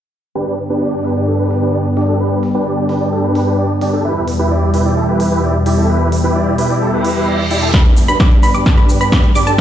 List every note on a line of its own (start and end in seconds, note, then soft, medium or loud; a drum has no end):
0.35 4.01 G2 medium
0.35 4.01 D3 medium
0.35 4.01 B3 medium
0.35 0.55 D4 medium
0.35 0.55 G4 medium
0.35 0.55 B4 medium
0.58 open hi-hat loud
0.70 0.80 D4 medium
0.70 0.80 G4 medium
0.70 0.80 B4 medium
0.82 1.01 D4 medium
0.82 1.01 G4 medium
0.82 1.01 D5 loud
1.05 1.13 D4 medium
1.05 1.13 G4 medium
1.05 1.13 B4 medium
1.05 open hi-hat medium
1.16 1.26 D4 medium
1.16 1.26 G4 medium
1.16 1.26 D5 medium
1.28 1.37 D4 medium
1.28 1.37 G4 medium
1.28 1.37 A4 medium
1.39 1.58 D4 medium
1.39 1.58 G4 medium
1.39 1.58 B4 medium
1.51 open hi-hat medium
1.62 1.72 D4 medium
1.62 1.72 G4 medium
1.62 1.72 B4 loud
1.74 1.86 D4 medium
1.74 1.86 G4 medium
1.74 1.86 D5 medium
1.97 2.06 D4 medium
1.97 2.06 G4 medium
1.97 2.06 D5 medium
1.97 open hi-hat medium
2.08 2.18 D4 medium
2.08 2.18 G4 medium
2.08 2.18 A4 medium
2.20 2.39 D4 medium
2.20 2.39 G4 medium
2.20 2.39 B4 loud
2.43 open hi-hat medium
2.55 2.64 D4 medium
2.55 2.64 G4 medium
2.55 2.64 B4 loud
2.66 2.85 D4 medium
2.66 2.85 G4 medium
2.66 2.85 D5 medium
2.89 2.98 D4 medium
2.89 2.98 G4 medium
2.89 2.98 B4 medium
2.89 open hi-hat loud
3.01 3.11 D4 medium
3.01 3.11 G4 medium
3.01 3.11 D5 medium
3.12 3.22 D4 medium
3.12 3.22 G4 medium
3.12 3.22 A4 medium
3.24 3.43 D4 medium
3.24 3.43 G4 medium
3.24 3.43 B4 medium
3.35 open hi-hat loud
3.47 3.57 D4 medium
3.47 3.57 G4 medium
3.47 3.57 B4 medium
3.58 3.70 D4 medium
3.58 3.70 G4 medium
3.58 3.70 D5 medium
3.81 3.90 D4 medium
3.81 3.90 G4 medium
3.81 3.90 D5 medium
3.81 open hi-hat medium
3.93 4.03 D4 medium
3.93 4.03 G4 medium
3.93 4.03 A4 medium
4.05 7.70 E2 medium
4.05 7.70 B2 medium
4.05 7.70 G3 medium
4.05 4.24 E4 medium
4.05 4.24 G4 medium
4.05 4.24 B4 medium
4.28 open hi-hat loud
4.39 4.49 E4 medium
4.39 4.49 G4 medium
4.39 4.49 B4 loud
4.51 4.70 E4 medium
4.51 4.70 G4 medium
4.51 4.70 D5 loud
4.74 4.83 E4 medium
4.74 4.83 G4 medium
4.74 4.83 B4 medium
4.74 open hi-hat loud
4.85 4.95 E4 medium
4.85 4.95 G4 medium
4.85 4.95 D5 medium
4.97 5.07 E4 medium
4.97 5.07 G4 medium
4.97 5.07 A4 medium
5.08 5.28 E4 medium
5.08 5.28 G4 medium
5.08 5.28 B4 medium
5.20 open hi-hat loud
5.32 5.41 E4 medium
5.32 5.41 G4 medium
5.32 5.41 B4 medium
5.43 5.55 E4 medium
5.43 5.55 G4 medium
5.43 5.55 D5 medium
5.66 5.75 E4 medium
5.66 5.75 G4 medium
5.66 5.75 D5 medium
5.66 open hi-hat medium
5.78 5.87 E4 medium
5.78 5.87 G4 medium
5.78 5.87 A4 medium
5.89 6.08 E4 medium
5.89 6.08 G4 medium
5.89 6.08 B4 medium
6.12 open hi-hat loud
6.24 6.34 E4 medium
6.24 6.34 G4 medium
6.24 6.34 B4 loud
6.35 6.55 E4 medium
6.35 6.55 G4 medium
6.35 6.55 D5 loud
6.58 6.67 E4 medium
6.58 6.67 G4 medium
6.58 6.67 B4 medium
6.58 open hi-hat loud
6.70 6.80 E4 medium
6.70 6.80 G4 medium
6.70 6.80 D5 medium
6.81 6.91 E4 medium
6.81 6.91 G4 medium
6.81 6.91 A4 medium
6.81 reverse cymbal medium
6.93 7.12 E4 medium
6.93 7.12 G4 medium
6.93 7.12 B4 medium
7.05 open hi-hat loud
7.16 7.26 E4 medium
7.16 7.26 G4 medium
7.16 7.26 B4 loud
7.28 7.40 E4 medium
7.28 7.40 G4 medium
7.28 7.40 D5 medium
7.51 7.60 E4 medium
7.51 7.60 G4 medium
7.51 7.60 D5 medium
7.51 open hi-hat loud
7.62 7.72 E4 medium
7.62 7.72 G4 medium
7.62 7.72 A4 medium
7.74 9.61 G2 medium
7.74 9.57 D3 medium
7.74 9.61 B3 medium
7.74 7.93 D4 medium
7.74 7.93 G4 medium
7.74 7.93 B4 medium
7.74 7.93 B5 medium
7.74 kick loud
7.74 snare soft
7.74 closed hi-hat medium
7.74 riser medium
7.74 shaker soft
7.85 closed hi-hat soft
7.97 open hi-hat loud
7.97 shaker medium
8.08 8.18 D4 medium
8.08 8.18 G4 medium
8.08 8.18 B4 loud
8.08 8.18 B5 loud
8.08 closed hi-hat soft
8.08 shaker soft
8.20 8.39 D4 medium
8.20 8.39 G4 medium
8.20 8.39 D5 loud
8.20 8.39 D6 medium
8.20 kick loud
8.20 snare soft
8.20 closed hi-hat soft
8.20 shaker soft
8.31 closed hi-hat soft
8.43 8.52 D4 medium
8.43 8.52 G4 medium
8.43 8.52 B4 medium
8.43 8.52 B5 medium
8.43 open hi-hat loud
8.43 shaker medium
8.54 8.64 D4 medium
8.54 8.64 G4 medium
8.54 8.64 D5 medium
8.54 8.64 D6 medium
8.54 closed hi-hat soft
8.54 shaker soft
8.66 8.76 D4 medium
8.66 8.76 G4 medium
8.66 8.76 A4 medium
8.66 8.76 A5 medium
8.66 kick loud
8.66 snare soft
8.66 closed hi-hat medium
8.66 shaker soft
8.78 8.97 D4 medium
8.78 8.97 G4 medium
8.78 8.97 B4 medium
8.78 8.97 B5 medium
8.78 closed hi-hat soft
8.89 open hi-hat loud
8.89 shaker medium
9.01 9.11 D4 medium
9.01 9.11 G4 medium
9.01 9.11 B4 loud
9.01 9.11 B5 loud
9.01 closed hi-hat medium
9.01 shaker soft
9.12 9.24 D4 medium
9.12 9.24 G4 medium
9.12 9.24 D5 medium
9.12 9.24 D6 medium
9.12 kick loud
9.12 snare soft
9.12 closed hi-hat soft
9.12 shaker soft
9.24 closed hi-hat soft
9.35 9.44 D4 medium
9.35 9.44 G4 medium
9.35 9.44 D5 medium
9.35 9.44 D6 loud
9.35 open hi-hat loud
9.35 shaker medium
9.47 9.57 D4 medium
9.47 9.57 G4 medium
9.47 9.57 A4 medium
9.47 9.57 A5 loud
9.47 closed hi-hat soft
9.47 shaker soft